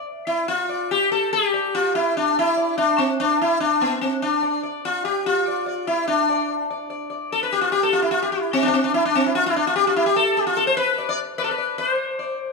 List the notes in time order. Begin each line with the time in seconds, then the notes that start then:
0.27 E4
0.48 F4
0.69 D5
0.91 G4
1.12 A4
1.33 G4
1.54 D5
1.75 F4
1.95 E4
2.17 D4
2.39 E4
2.57 D5
2.78 D4
2.98 C4
3.20 D4
3.42 E4
3.60 D4
3.82 B3
4.01 C4
4.22 D4
4.43 D5
4.63 D5
4.85 F4
5.05 G4
5.26 F4
5.48 D5
5.66 D5
5.87 E4
6.08 D4
6.29 D5
6.71 D5
6.90 D5
7.10 D5
7.32 A4
7.43 B4
7.53 G4
7.61 F4
7.72 G4
7.83 A4
7.93 F4
8.02 E4
8.11 F4
8.23 G4
8.32 E4
8.53 C4
8.63 C4 D4
8.68 D4
8.74 C4
8.84 D4
8.94 E4
9.05 D4
9.15 C4
9.26 E4
9.35 F4
9.46 E4
9.56 D4
9.67 F4
9.76 G4
9.87 F4
9.96 E4
10.06 G4
10.16 A4
10.37 G4
10.47 F4
10.57 A4
10.67 C5
10.77 B4
10.98 D5
11.09 D5
11.38 B4 D5
11.44 A4
11.51 B4
11.58 D5
11.78 B4 D5
11.90 C5
12.19 D5